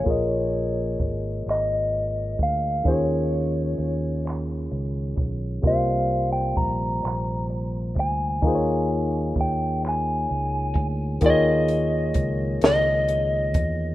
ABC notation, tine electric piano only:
X:1
M:6/8
L:1/8
Q:3/8=43
K:Ebmix
V:1 name="Tine electric piano"
[B,FABde]6 | [E,DFAd]6 | [C,G,B,Fc]6 | [B,EFAcd]6 |
[E,B,FAd]6 |]